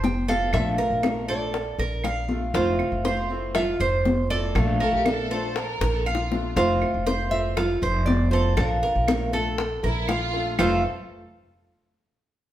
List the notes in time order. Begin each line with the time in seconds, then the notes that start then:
Already playing: F1 C5
0.04 G5, high bongo, low bongo, high conga
0.28 E3 A3 C4 F4 A4 F5, high bongo, high conga
0.53 A#1 F3 A3 D4 F4 E5, high bongo, high conga, claves
0.78 A#4, high bongo, high conga
0.90 A#1
1.03 F3 A3 D4 F4, high bongo, high conga, claves
1.28 A3 D4 F4 A4 D5, high conga
1.54 muted steel-string acoustic guitar stroke, high bongo, high conga
1.79 A#1 A#4, high bongo, high conga
2.04 F5, high bongo, low bongo, high conga, claves
2.28 A3 D4 F4, high bongo, high conga
2.54 F1 C3 A3 C4 F4 C5, high bongo, high conga
2.79 high bongo, high conga, claves
2.92 F1
3.04 E3 A3 C4 F4 C5, high bongo, high conga
3.29 E3 A3 C4 F4, high conga
3.55 F4 E5, muted steel-string acoustic guitar stroke, high bongo, high conga, low conga, claves
3.80 F1 C5, high bongo, high conga
4.05 high bongo, low bongo, high conga
4.30 E3 A3 C4 F4 A4 D5, high bongo
4.55 A#1 F3 A3 D4 F4, high bongo, high conga, claves
4.80 A4 A#4, high bongo, high conga
4.90 A#1 F#4 G4
5.05 F3 A3 D4 F4 A4, high bongo, high conga, claves
5.31 A3 D4 F4 A4 C5, high conga
5.56 A#4, muted steel-string acoustic guitar stroke, high bongo, high conga
5.81 A#1 A#4, high bongo, high conga
5.94 A4
6.06 F4 F5, high conga, claves
6.15 low bongo
6.31 A3 D4 F4, low bongo, high conga
6.56 F1 C3 A3 C4 F4 C5, high bongo, high conga
6.82 high bongo, high conga, claves
6.94 F1
7.06 E3 A3 C4 F4 C5, high bongo, high conga
7.31 E3 A3 C4 F4 E5, high conga
7.57 F4, muted steel-string acoustic guitar stroke, high bongo, high conga, low conga, claves
7.82 F1 C5, high bongo, high conga
8.06 D5, high bongo, low bongo, high conga
8.31 E3 A3 C4 F4 A4 C5, high bongo
8.57 A#1 F3 D4 F4 A#4, high bongo, high conga, claves
8.83 A#4, high bongo, high conga
8.95 A#1
9.07 F3 A3 D4 F4, high bongo, high conga, claves
9.33 A3 D4 F4 A4, high conga
9.58 muted steel-string acoustic guitar stroke, high bongo, high conga
9.83 A#1 E4 A#4, high bongo, high conga
10.08 F4 F5, high bongo, low bongo, high conga, claves
10.34 A3 D4 F4, high bongo
10.59 F1 F2 C3 E3 A3 C4 F4 A4 C5 E5, low bongo, low conga, claves